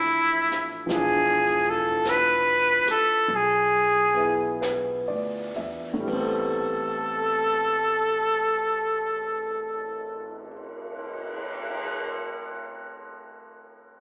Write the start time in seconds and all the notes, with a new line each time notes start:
Already playing: A1 D3 F3 A3 C4 D4 E4
0.51 snare
0.86 E1 E3 F3 D4, brush sweep, snare
0.91 F4 G#4
1.70 A4
2.05 brush sweep, snare, hi-hat pedal
2.10 B4
2.86 muted upright bass stroke, snare
2.91 A4
3.28 B1, brush sweep
3.36 G#4
4.14 B3 E4 G#4
4.61 B4, brush sweep, snare, hi-hat pedal
5.08 D2 D5
5.56 E2 E5
5.94 A2
6.00 G3
6.06 A1 B3, kick, ride
6.11 C4 A4
6.19 A4
7.08 cymbal swell